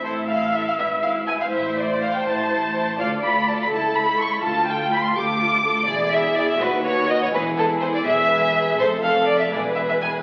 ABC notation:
X:1
M:6/8
L:1/16
Q:3/8=82
K:Am
V:1 name="Violin section"
c2 f2 e f e2 f2 ^g f | e2 d2 f g a6 | f2 b2 a b a2 b2 ^c' b | a2 g2 b c' d'6 |
d2 e2 d e B2 ^c2 ^d c | B2 A2 c d e6 | c2 f2 d e d2 e e ^g2 |]
V:2 name="Viola section"
e12 | c12 | d6 A6 | F6 G2 F2 A2 |
^G6 ^F6 | E6 ^G2 B2 G2 | A6 B6 |]
V:3 name="Violin section"
[EA]2 [EA]2 [EA]2 [EB]2 [EB]2 [EB]2 | [Ec]2 [Ec]2 [Ec]2 [Ec]2 [Ec]2 [Ec]2 | [FA]2 [FA]2 [FA]2 [EA]2 [EA]2 [EA]2 | [FA]2 [FA]2 [FA]2 [FA]2 [FA]2 [FA]2 |
[E^G]2 [EG]2 [EG]2 [^FB]2 [FB]2 [FB]2 | [^GB]2 [GB]2 [GB]2 [GB]2 [GB]2 [GB]2 | A2 A2 A2 [^GB]2 [GB]2 [GB]2 |]
V:4 name="Cello section" clef=bass
A,,6 ^G,,6 | A,,6 A,,6 | D,,6 ^C,,6 | D,,6 D,,6 |
E,,6 ^D,,6 | E,,6 E,,6 | F,,6 E,,6 |]
V:5 name="Double bass section" clef=bass
A,,,6 ^G,,,6 | A,,,6 A,,,6 | D,,6 ^C,,6 | D,,6 D,,6 |
E,,,6 ^D,,6 | E,,,6 E,,,6 | F,,,6 E,,,6 |]